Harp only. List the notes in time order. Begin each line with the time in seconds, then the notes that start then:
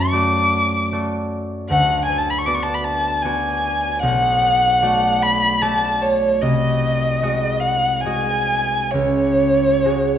Already playing: F#2 A3 F#4
0.12 A3 F#4 D5
0.92 A3 F#4 D5
1.70 D2
2.47 B3 F#4 D5
3.24 B3 F#4 D5
4.02 B1
4.82 A3 F#4 D5
5.62 A3 F#4 D5
6.42 C2
7.23 G#3 F#4 D#5
8.05 G#3 F#4 D#5
8.94 C#2
9.85 G#3 F#4 G#4